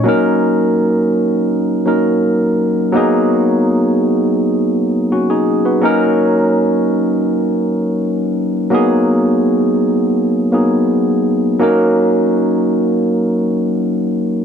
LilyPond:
\new Staff \with { instrumentName = "Tine electric piano" } { \time 4/4 \key ees \minor \tempo 4 = 83 << { r1 | r2. <des' ges'>16 <ees' aes'>8 <ges' ces''>16~ | <ges' ces''>16 r2. r8. | r1 |
r1 | } \\ { <ges bes des' ees' bes'>2~ <ges bes des' ees' bes'>8 <ges bes des' ees' bes'>4. | <ges bes ces' ees' aes'>1 | <ges bes des' ees' bes'>1 | <ges bes ces' ees' aes'>2~ <ges bes ces' ees' aes'>8 <ges bes ces' ees' aes'>4. |
<ges bes des' ees' bes'>1 | } >> }